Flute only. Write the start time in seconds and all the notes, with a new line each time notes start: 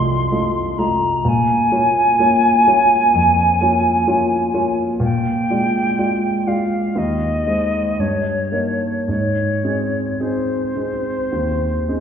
Already playing: C6
0.78 A#5
1.28 G#5
5.03 G5
6.47 F5
6.98 D#5
8.00 C#5
9.08 C#5
10.22 C5